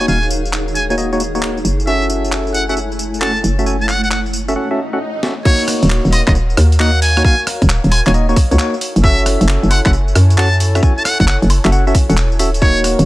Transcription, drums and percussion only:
0.01 tambourine soft
0.08 tambourine soft
0.23 tambourine soft
0.30 tambourine medium
0.45 tambourine soft
0.53 clap loud
0.53 tambourine soft
0.68 tambourine soft
0.75 tambourine medium
0.90 tambourine soft
0.98 tambourine soft
1.13 tambourine soft
1.20 tambourine medium
1.35 tambourine soft
1.42 clap loud
1.42 tambourine soft
1.57 tambourine soft
1.65 tambourine medium
1.80 tambourine soft
1.87 tambourine soft
2.02 tambourine soft
2.10 tambourine medium
2.25 tambourine soft
2.32 clap loud
2.32 tambourine soft
2.47 tambourine soft
2.54 tambourine medium
2.69 tambourine soft
2.77 tambourine soft
2.92 tambourine soft
2.99 tambourine medium
3.14 tambourine soft
3.22 clap loud
3.22 tambourine soft
3.37 tambourine soft
3.44 tambourine medium
3.59 tambourine soft
3.66 tambourine soft
3.81 tambourine soft
3.89 clap medium
3.89 tambourine medium
4.04 tambourine soft
4.11 clap loud
4.11 tambourine soft
4.26 tambourine soft
4.33 tambourine medium
4.48 tambourine soft
5.23 snare medium
5.45 kick loud
5.45 crash loud
5.45 tambourine soft
5.60 tambourine soft
5.68 cross-stick medium
5.68 open hi-hat loud
5.68 tambourine medium
5.83 closed hi-hat medium
5.83 tambourine soft
5.90 clap loud
5.90 tambourine soft
6.05 tambourine soft
6.13 open hi-hat loud
6.13 tambourine medium
6.13 high woodblock medium
6.27 kick loud
6.27 clap medium
6.27 closed hi-hat medium
6.27 tambourine soft
6.27 high woodblock medium
6.35 closed hi-hat soft
6.35 tambourine soft
6.50 tambourine soft
6.57 cross-stick medium
6.57 open hi-hat loud
6.57 tambourine medium
6.72 closed hi-hat medium
6.72 tambourine soft
6.80 clap loud
6.80 tambourine soft
6.95 tambourine soft
7.02 open hi-hat loud
7.02 tambourine medium
7.17 cross-stick medium
7.17 closed hi-hat medium
7.17 tambourine soft
7.24 kick loud
7.24 tambourine soft
7.39 tambourine soft
7.47 cross-stick medium
7.47 open hi-hat loud
7.47 tambourine medium
7.62 kick medium
7.62 closed hi-hat medium
7.62 tambourine soft
7.69 clap loud
7.69 tambourine soft
7.84 closed hi-hat soft
7.84 tambourine soft
7.92 open hi-hat loud
7.92 tambourine medium
7.92 high woodblock medium
8.07 clap medium
8.07 closed hi-hat medium
8.07 tambourine soft
8.14 closed hi-hat soft
8.14 tambourine soft
8.29 tambourine soft
8.36 kick loud
8.36 open hi-hat loud
8.36 tambourine medium
8.51 closed hi-hat medium
8.51 tambourine soft
8.59 clap loud
8.59 tambourine soft
8.74 tambourine soft
8.81 open hi-hat loud
8.81 tambourine medium
8.96 closed hi-hat medium
8.96 tambourine soft
9.04 kick loud
9.04 tambourine soft
9.19 tambourine soft
9.26 cross-stick medium
9.26 open hi-hat loud
9.26 tambourine medium
9.41 closed hi-hat medium
9.41 tambourine soft
9.48 clap loud
9.48 tambourine soft
9.63 tambourine soft
9.71 open hi-hat loud
9.71 tambourine medium
9.71 high woodblock medium
9.86 kick loud
9.86 clap medium
9.86 closed hi-hat medium
9.86 tambourine soft
9.86 high woodblock medium
9.93 closed hi-hat soft
9.93 tambourine soft
10.08 tambourine soft
10.15 cross-stick medium
10.15 open hi-hat loud
10.15 tambourine medium
10.30 closed hi-hat medium
10.30 tambourine soft
10.38 clap loud
10.38 tambourine soft
10.53 tambourine soft
10.60 open hi-hat loud
10.60 tambourine medium
10.75 cross-stick medium
10.75 closed hi-hat medium
10.75 tambourine soft
10.83 kick loud
10.83 tambourine soft
10.98 tambourine soft
11.05 cross-stick medium
11.05 open hi-hat loud
11.05 tambourine medium
11.20 kick medium
11.20 closed hi-hat medium
11.20 tambourine soft
11.28 clap loud
11.28 tambourine soft
11.42 closed hi-hat soft
11.42 tambourine soft
11.50 open hi-hat medium
11.50 tambourine medium
11.50 high woodblock medium
11.65 clap medium
11.65 closed hi-hat medium
11.65 tambourine soft
11.72 closed hi-hat soft
11.72 tambourine soft
11.87 tambourine soft
11.95 kick loud
11.95 open hi-hat loud
11.95 tambourine medium
12.10 closed hi-hat medium
12.10 tambourine soft
12.17 clap loud
12.17 tambourine soft
12.32 tambourine soft
12.39 open hi-hat loud
12.39 tambourine medium
12.54 closed hi-hat medium
12.54 tambourine soft
12.62 kick loud
12.62 tambourine soft
12.77 tambourine soft
12.84 cross-stick medium
12.84 open hi-hat loud
12.84 tambourine medium
12.99 closed hi-hat medium
12.99 tambourine soft

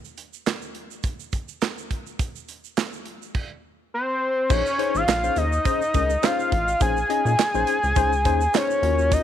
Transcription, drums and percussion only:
0.05 shaker soft
0.17 closed hi-hat medium
0.17 shaker soft
0.33 shaker medium
0.46 snare loud
0.46 clap medium
0.46 closed hi-hat medium
0.46 shaker medium
0.62 shaker soft
0.75 closed hi-hat medium
0.91 shaker soft
1.03 kick loud
1.03 closed hi-hat medium
1.03 shaker medium
1.20 shaker soft
1.32 kick medium
1.32 closed hi-hat medium
1.32 shaker soft
1.48 shaker medium
1.61 snare loud
1.61 clap medium
1.61 closed hi-hat medium
1.61 shaker medium
1.78 shaker medium
1.91 kick medium
1.91 closed hi-hat medium
2.06 shaker soft
2.19 kick loud
2.19 closed hi-hat medium
2.19 shaker medium
2.36 shaker soft
2.48 closed hi-hat medium
2.48 shaker soft
2.64 shaker soft
2.77 snare loud
2.77 clap medium
2.77 closed hi-hat medium
2.77 shaker medium
2.93 shaker medium
3.06 closed hi-hat medium
3.22 shaker soft
3.35 kick loud
3.35 crash medium
4.50 kick loud
4.50 crash loud
4.50 shaker medium
4.66 shaker medium
4.79 closed hi-hat medium
4.95 shaker medium
5.08 snare loud
5.08 clap loud
5.08 closed hi-hat medium
5.08 shaker medium
5.24 shaker medium
5.36 closed hi-hat medium
5.36 shaker medium
5.53 shaker medium
5.65 kick loud
5.65 closed hi-hat medium
5.65 shaker medium
5.82 shaker medium
5.94 kick loud
5.94 closed hi-hat medium
5.94 shaker medium
6.10 shaker medium
6.23 snare loud
6.23 clap loud
6.23 closed hi-hat loud
6.23 shaker medium
6.40 shaker medium
6.52 kick medium
6.52 closed hi-hat medium
6.68 shaker medium
6.81 kick loud
6.81 closed hi-hat medium
6.81 shaker medium
6.97 shaker medium
7.10 closed hi-hat medium
7.26 shaker medium
7.39 snare loud
7.39 clap loud
7.39 closed hi-hat medium
7.39 shaker medium
7.55 shaker medium
7.67 closed hi-hat medium
7.67 shaker medium
7.83 shaker soft
7.96 kick loud
7.96 closed hi-hat medium
7.96 shaker medium
8.13 shaker medium
8.25 kick loud
8.25 closed hi-hat medium
8.25 shaker medium
8.41 shaker medium
8.54 snare loud
8.54 clap loud
8.54 closed hi-hat loud
8.54 shaker medium
8.70 shaker medium
8.83 closed hi-hat medium
8.99 shaker soft
9.12 kick loud
9.12 closed hi-hat medium
9.12 shaker medium

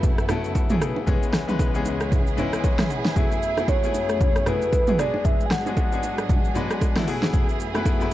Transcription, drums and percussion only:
0.03 kick loud
0.03 low conga medium
0.03 shaker medium
0.18 cross-stick medium
0.18 shaker soft
0.29 cross-stick loud
0.29 low bongo medium
0.29 low conga medium
0.29 shaker medium
0.44 shaker medium
0.55 kick medium
0.55 high bongo medium
0.55 shaker medium
0.70 mid tom loud
0.70 shaker medium
0.81 cross-stick medium
0.81 high bongo medium
0.81 shaker medium
0.96 low bongo medium
1.07 kick loud
1.07 low conga medium
1.07 shaker medium
1.23 shaker medium
1.33 cross-stick medium
1.33 snare medium
1.33 shaker loud
1.48 mid tom medium
1.48 low bongo medium
1.48 shaker medium
1.59 kick medium
1.59 high bongo medium
1.59 shaker medium
1.75 shaker medium
1.85 low bongo medium
1.85 shaker loud
2.00 cross-stick medium
2.00 shaker soft
2.12 kick loud
2.12 low conga medium
2.12 shaker medium
2.27 shaker soft
2.38 low bongo medium
2.38 low conga medium
2.38 shaker medium
2.53 cross-stick medium
2.53 shaker medium
2.64 kick medium
2.64 high bongo medium
2.64 shaker medium
2.78 cross-stick loud
2.78 snare medium
2.78 mid tom loud
2.78 shaker medium
2.90 high bongo medium
2.90 shaker medium
3.05 snare medium
3.05 low bongo medium
3.05 shaker soft
3.16 kick loud
3.16 low conga medium
3.16 shaker medium
3.32 shaker medium
3.43 shaker loud
3.57 cross-stick medium
3.57 low bongo medium
3.57 shaker medium
3.68 kick medium
3.68 high bongo medium
3.68 shaker medium
3.84 shaker medium
3.94 low bongo medium
3.94 shaker loud
4.09 cross-stick medium
4.09 shaker soft
4.21 kick loud
4.21 low conga medium
4.21 shaker medium
4.36 cross-stick medium
4.36 shaker soft
4.46 cross-stick medium
4.46 low bongo medium
4.46 low conga medium
4.46 shaker medium
4.62 shaker medium
4.73 kick medium
4.73 high bongo medium
4.73 shaker medium
4.87 mid tom medium
4.87 shaker medium
4.99 cross-stick medium
4.99 high bongo medium
4.99 shaker medium
5.14 low bongo medium
5.25 kick loud
5.25 low conga medium
5.25 shaker medium
5.40 shaker medium
5.51 cross-stick medium
5.51 snare medium
5.51 shaker loud
5.66 low bongo medium
5.66 shaker medium
5.77 kick medium
5.77 high bongo medium
5.77 shaker medium
5.92 shaker soft
6.03 low bongo medium
6.03 shaker loud
6.18 cross-stick medium
6.18 shaker medium
6.29 kick loud
6.29 low conga medium
6.29 shaker medium
6.45 shaker soft
6.55 low bongo medium
6.55 low conga medium
6.55 shaker medium
6.71 cross-stick medium
6.71 shaker medium
6.81 kick medium
6.81 high bongo medium
6.81 shaker medium
6.96 cross-stick loud
6.96 snare medium
6.96 mid tom medium
6.96 shaker medium
7.08 open hi-hat medium
7.08 high bongo medium
7.08 shaker medium
7.23 snare medium
7.23 low bongo medium
7.34 kick loud
7.34 low conga medium
7.34 shaker medium
7.49 shaker medium
7.60 shaker medium
7.75 cross-stick medium
7.75 low bongo medium
7.75 shaker medium
7.85 kick medium
7.85 high bongo medium
7.85 shaker medium
8.01 shaker soft

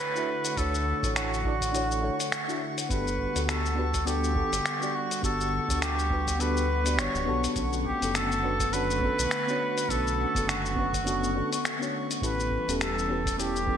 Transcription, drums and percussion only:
0.00 shaker medium
0.16 shaker soft
0.45 closed hi-hat medium
0.45 shaker medium
0.57 kick loud
0.57 closed hi-hat soft
0.57 shaker medium
0.75 shaker soft
1.03 kick loud
1.03 closed hi-hat soft
1.03 shaker medium
1.16 finger snap medium
1.16 closed hi-hat soft
1.16 shaker medium
1.34 shaker soft
1.45 kick medium
1.61 kick medium
1.61 closed hi-hat medium
1.61 shaker medium
1.75 closed hi-hat soft
1.75 shaker soft
1.92 shaker soft
2.20 closed hi-hat medium
2.20 shaker medium
2.32 finger snap loud
2.32 closed hi-hat soft
2.32 shaker medium
2.49 shaker soft
2.78 closed hi-hat medium
2.78 shaker medium
2.90 kick loud
2.90 closed hi-hat soft
2.90 shaker medium
3.08 shaker soft
3.19 kick medium
3.36 closed hi-hat soft
3.36 shaker medium
3.49 finger snap medium
3.49 closed hi-hat soft
3.49 shaker medium
3.66 shaker soft
3.94 kick loud
3.94 closed hi-hat medium
3.94 shaker medium
4.07 closed hi-hat soft
4.07 shaker medium
4.24 shaker soft
4.36 kick loud
4.53 closed hi-hat medium
4.53 shaker medium
4.66 finger snap medium
4.66 closed hi-hat soft
4.66 shaker medium
4.82 shaker soft
5.11 closed hi-hat medium
5.11 shaker medium
5.23 kick loud
5.23 closed hi-hat soft
5.23 shaker medium
5.41 shaker soft
5.69 kick loud
5.69 closed hi-hat soft
5.69 shaker medium
5.82 finger snap medium
5.82 closed hi-hat soft
5.82 shaker medium
5.99 shaker soft
6.10 kick medium
6.27 kick medium
6.27 closed hi-hat medium
6.27 shaker medium
6.40 closed hi-hat soft
6.40 shaker soft
6.57 shaker soft
6.86 closed hi-hat medium
6.86 shaker medium
6.99 finger snap medium
6.99 closed hi-hat soft
6.99 shaker medium
7.15 shaker soft
7.44 closed hi-hat medium
7.44 shaker medium
7.56 kick loud
7.56 closed hi-hat soft
7.56 shaker medium
7.73 shaker soft
7.85 kick medium
8.02 closed hi-hat soft
8.02 shaker medium
8.15 finger snap medium
8.15 closed hi-hat soft
8.15 shaker medium
8.32 shaker soft
8.60 kick medium
8.60 closed hi-hat soft
8.60 shaker medium
8.73 closed hi-hat soft
8.73 shaker soft
8.91 shaker soft
9.02 kick loud
9.19 closed hi-hat medium
9.19 shaker medium
9.31 finger snap medium
9.31 closed hi-hat soft
9.31 shaker medium
9.49 shaker soft
9.78 closed hi-hat medium
9.78 shaker medium
9.89 kick loud
9.89 closed hi-hat soft
9.89 shaker soft
10.08 shaker soft
10.35 kick medium
10.35 closed hi-hat soft
10.35 shaker medium
10.49 finger snap medium
10.49 closed hi-hat soft
10.49 shaker medium
10.66 shaker soft
10.77 kick medium
10.93 kick medium
10.93 closed hi-hat medium
10.93 shaker medium
11.07 closed hi-hat soft
11.07 shaker soft
11.24 shaker soft
11.53 closed hi-hat medium
11.53 shaker medium
11.65 finger snap medium
11.65 closed hi-hat soft
11.65 shaker medium
11.83 shaker soft
12.11 closed hi-hat medium
12.11 shaker medium
12.22 kick loud
12.22 closed hi-hat soft
12.22 shaker medium
12.40 shaker soft
12.51 kick medium
12.69 closed hi-hat soft
12.69 shaker medium
12.81 finger snap medium
12.81 closed hi-hat soft
12.81 shaker soft
12.99 shaker soft
13.26 kick loud
13.26 closed hi-hat medium
13.26 shaker medium
13.40 closed hi-hat soft
13.40 shaker soft
13.56 shaker soft
13.67 kick medium

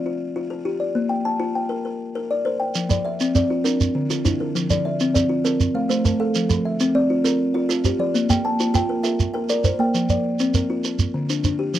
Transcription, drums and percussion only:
2.75 shekere medium
2.90 shekere medium
3.20 shekere medium
3.35 shekere medium
3.65 shekere medium
3.81 shekere medium
4.10 shekere medium
4.25 shekere medium
4.56 shekere medium
4.70 shekere medium
5.00 shekere medium
5.16 shekere medium
5.45 shekere medium
5.60 shekere medium
5.90 shekere medium
6.05 shekere medium
6.35 shekere medium
6.50 shekere medium
6.80 shekere medium
7.25 shekere medium
7.70 shekere medium
7.85 shekere medium
8.15 shekere medium
8.30 shekere medium
8.60 shekere medium
8.75 shekere medium
9.04 shekere medium
9.20 shekere medium
9.49 shekere medium
9.64 shekere medium
9.95 shekere medium
10.09 shekere medium
10.39 shekere medium
10.54 shekere medium
10.84 shekere medium
10.99 shekere medium
11.30 shekere medium
11.44 shekere medium
11.74 shekere soft

